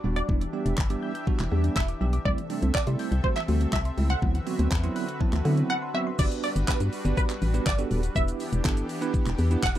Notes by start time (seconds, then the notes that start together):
Already playing: G3 D4 F#4 D5
0.04 D#1 G3 B3 D4 F#4
0.16 D5 D6, closed hi-hat
0.29 E1 E3 G3 B3 D4 E4 G4 E5, kick
0.41 E3, closed hi-hat
0.53 G3 B3 D4 G4
0.66 E1 D4, closed hi-hat
0.78 G1 B5, kick, clap
0.90 G3 B3 D4 G4 D6, closed hi-hat
1.03 G6
1.15 G6, closed hi-hat
1.27 E3 G3 B3 D4 F#4, kick
1.39 E1 E3, clap, closed hi-hat
1.51 E2 G3 B3 D4 G4
1.64 D4, closed hi-hat
1.76 E1 E5 B5, kick, clap
1.88 D6, closed hi-hat
2.01 B1 G3 B3 D4 G4
2.13 D6, closed hi-hat
2.25 C2 C3 E3 G3 A3 C4 E4 A4 D5 E5, kick
2.38 E3, closed hi-hat
2.50 G3 A3 C4 D4, open hi-hat
2.62 C2 C4, closed hi-hat
2.75 C3 D5 A5, kick, clap
2.87 C3 G3 A3 C4 E4 C6, closed hi-hat
2.99 G6, open hi-hat
3.12 C2 G6, closed hi-hat
3.24 E3 G3 A3 C4 F#4 C5, kick
3.36 E3 E5, clap, closed hi-hat
3.48 D2 G3 A3 C4 F#4, open hi-hat
3.61 C4, closed hi-hat
3.73 C2 E5 A5, kick, clap
3.85 C6, closed hi-hat
3.97 C#2 G3 A3 C4 E4, open hi-hat
4.10 F#5 C6, closed hi-hat
4.22 D2 D3 E3 F#3 B3 C4 E4 F#4 B4, kick
4.34 E3, closed hi-hat
4.47 F#3 B3 C4 F#4, open hi-hat
4.59 D2 C4, closed hi-hat
4.71 E2 B5, kick, clap
4.83 F#3 B3 C4 E4 C6, closed hi-hat
4.96 B5 F#6, open hi-hat
5.08 F#6, closed hi-hat
5.20 E3 F#3 B3 C4 E4 A5, kick
5.33 D2 E3, clap, closed hi-hat
5.45 D3 F#3 B3 C4 E4, open hi-hat
5.57 C4, closed hi-hat
5.70 F#5 A5 B5
5.82 C6
5.94 F#3 B3 C4 F#4 E5
6.07 C6
6.19 G1 G3 B3 D4 F#4 G4 B4 D5, kick, crash, shaker
6.32 closed hi-hat, shaker
6.43 D5, open hi-hat, shaker
6.56 G1, closed hi-hat, shaker
6.68 G2 B3 D4 F#4 G4 B4, kick, clap, shaker
6.80 G2, closed hi-hat, shaker
6.93 open hi-hat, shaker
7.05 G1 B3 D4 F#4 G4 D5, closed hi-hat, shaker
7.17 B4, kick, shaker
7.30 clap, closed hi-hat, shaker
7.42 A1, open hi-hat, shaker
7.54 B3 D4 F#4 G4 B4, closed hi-hat, shaker
7.66 G1 D5, kick, clap, shaker
7.78 B3 D4 F#4 G4 A4, closed hi-hat, shaker
7.91 D#1, open hi-hat, shaker
8.03 closed hi-hat, shaker
8.15 E1 E3 B3 D4 E4 G4 B4 E5, kick, shaker
8.28 closed hi-hat, shaker
8.40 open hi-hat, shaker
8.53 E1, closed hi-hat, shaker
8.65 G1 B3 D4 E4 G4 A4, kick, clap, shaker
8.77 closed hi-hat, shaker
8.89 open hi-hat, shaker
9.01 B3 D4 E4 G4 B4, closed hi-hat, shaker
9.14 kick, shaker
9.26 E1, clap, closed hi-hat, shaker
9.38 E2, open hi-hat, shaker
9.51 B3 D4 E4 G4 B4, closed hi-hat, shaker
9.63 E1 F#5, kick, clap, shaker
9.75 B3 D4 E4 G4 B4, closed hi-hat, shaker